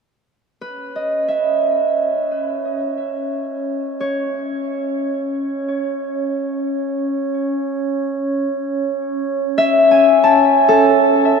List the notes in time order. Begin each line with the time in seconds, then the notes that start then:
0.61 C#4 B4 C#5
0.96 D#5
1.28 E5
4.01 C#5
9.58 E5
9.91 G#5
10.24 A5
10.69 A4